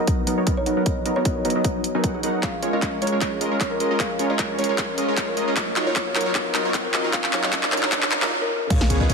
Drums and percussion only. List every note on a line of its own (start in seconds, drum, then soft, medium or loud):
0.07 kick loud
0.07 closed hi-hat medium
0.27 closed hi-hat medium
0.47 kick medium
0.47 closed hi-hat medium
0.66 closed hi-hat medium
0.86 kick loud
0.86 closed hi-hat medium
1.06 closed hi-hat medium
1.25 kick loud
1.25 closed hi-hat medium
1.45 closed hi-hat medium
1.50 closed hi-hat medium
1.64 kick loud
1.64 closed hi-hat medium
1.84 closed hi-hat medium
2.04 kick loud
2.04 closed hi-hat medium
2.23 closed hi-hat medium
2.43 kick loud
2.43 clap soft
2.43 closed hi-hat medium
2.63 closed hi-hat medium
2.82 kick loud
2.82 clap soft
2.82 closed hi-hat medium
3.02 closed hi-hat soft
3.07 closed hi-hat medium
3.21 kick medium
3.21 clap medium
3.21 closed hi-hat medium
3.41 closed hi-hat medium
3.61 kick loud
3.61 clap medium
3.61 closed hi-hat medium
3.80 closed hi-hat medium
4.00 kick loud
4.00 clap medium
4.00 closed hi-hat medium
4.19 closed hi-hat medium
4.39 kick loud
4.39 clap medium
4.39 closed hi-hat medium
4.59 closed hi-hat soft
4.64 closed hi-hat medium
4.78 kick loud
4.78 clap medium
4.78 closed hi-hat medium
4.98 closed hi-hat medium
5.17 kick loud
5.17 clap medium
5.17 closed hi-hat medium
5.37 closed hi-hat medium
5.57 kick loud
5.57 clap medium
5.57 closed hi-hat medium
5.76 clap medium
5.76 closed hi-hat medium
5.96 kick loud
5.96 clap medium
5.96 closed hi-hat medium
6.15 clap medium
6.15 closed hi-hat soft
6.21 closed hi-hat medium
6.35 kick loud
6.35 clap medium
6.35 closed hi-hat medium
6.55 clap medium
6.55 closed hi-hat medium
6.74 kick loud
6.74 clap medium
6.74 closed hi-hat medium
6.94 clap medium
6.94 closed hi-hat medium
7.13 kick loud
7.13 clap medium
7.13 closed hi-hat medium
7.24 clap medium
7.33 clap medium
7.33 closed hi-hat medium
7.43 clap medium
7.53 kick loud
7.53 clap loud
7.53 closed hi-hat medium
7.63 clap medium
7.72 clap loud
7.72 closed hi-hat medium
7.77 closed hi-hat medium
7.83 clap medium
7.92 kick medium
7.92 clap loud
7.92 closed hi-hat medium
8.02 clap medium
8.11 clap loud
8.11 closed hi-hat medium
8.22 clap medium
8.70 kick loud
8.70 closed hi-hat medium
8.70 crash loud
8.81 snare medium
8.90 closed hi-hat medium
9.10 closed hi-hat medium